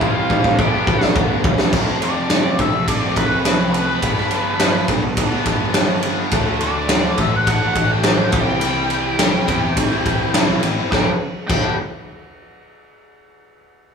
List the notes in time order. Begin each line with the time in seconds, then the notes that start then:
Already playing: C3 E3 G3 C4 E4 G4 E5
0.00 C3 G3 C4 E4 F4, kick
0.15 G3 C4 E4
0.30 C2 C3 G3 C4 E4, kick
0.44 G2, muted overdriven electric guitar stroke, kick
0.58 G1 G2 D3 G3 A3 B3 D4 G4, kick
0.73 G3 B3 D4
0.87 D3 G3 B3 D4, kick
1.01 muted overdriven electric guitar stroke, snare
1.16 G1 G2 D3 G3 B3 D4, kick
1.44 F1, kick
1.58 G3 B3 D4, snare
1.73 F1 F2 C3 F3 A3 C4 F4, kick, crash
1.87 snare
2.01 C3 F3 A3 C4 D5, ride
2.30 F2 C3 F3 A3 C4, snare, ride
2.44 F3 A3 C4
2.59 C2 C3 F3 A3 C4 E5, kick, ride
2.73 muted overdriven electric guitar stroke
2.88 C2 F2 C3 F3 A3 C4 F4 D5, kick, ride
3.01 F3 A3 C4
3.16 C2 C3 F3 A3 C4 B4, kick, ride
3.44 F2 C3 F3 A3 C4, snare, ride
3.58 F3 A3 C4
3.73 C3 F3 A3 C4 B4, ride
3.88 F3 A3 C4
4.02 G1 G2 D3 G3 B3 D4 G4, kick, ride
4.17 snare
4.31 D3 G3 B3 D4, ride
4.59 G2 D3 G3 B3 D4, snare, ride
4.74 G3 B3 D4
4.88 B1 D3 G3 B3 D4, kick, ride
5.03 muted overdriven electric guitar stroke
5.17 G1 G2 D3 G3 B3 D4 G4, kick, ride
5.30 G3 B3 D4
5.44 G1 D3 G3 B3 D4, kick, ride
5.73 G2 D3 G3 B3 D4, snare, ride
5.87 G3 B3 D4
6.02 D3 G3 B3 D4, ride
6.16 G3 B3 D4
6.31 D2 D3 F#3 A3 D4, kick, ride
6.35 F#4
6.60 D3 F#3 A3 D4 D5, ride
6.89 D3 F#3 A3 D4, snare, ride
7.03 F#3 A3 D4
7.18 A1 D3 F#3 A3 D4 E5, kick, ride
7.33 F#5, muted overdriven electric guitar stroke
7.47 A1 D3 A3 D4 F#4, kick, ride
7.61 F#3 A3 D4
7.75 A1 D3 F#3 A3 D4, kick, ride
7.92 G5
8.04 D3 F#3 A3 D4, snare, ride
8.19 F#3 A3 D4
8.32 C2 C3 E3 G3 C4 E4 G4 G5, kick, ride
8.47 G3 C4 E4
8.60 C3 G3 C4 E4, ride
8.90 C3 G3 C4 E4, ride
9.19 C3 G3 C4 E4, snare, ride
9.33 G3 C4 E4
9.47 E2 C3 E3 G3 C4 E4 G4, kick, ride
9.62 muted overdriven electric guitar stroke
9.77 C2, kick, ride
9.90 G3 C4 E4
10.04 C2 C3 G3 C4 E4, kick, ride
10.33 C3 G3 C4 E4, snare, ride
10.48 B1 G3 C4 E4
10.62 A1 C3 G3 C4 E4, ride
10.76 G1 G3 C4 E4
10.92 G1 G2 D3 G3 B3 D4 G4 G5, kick, snare
11.48 G1 G2 D3 G3 B3 G5, kick, crash
11.52 D4 G4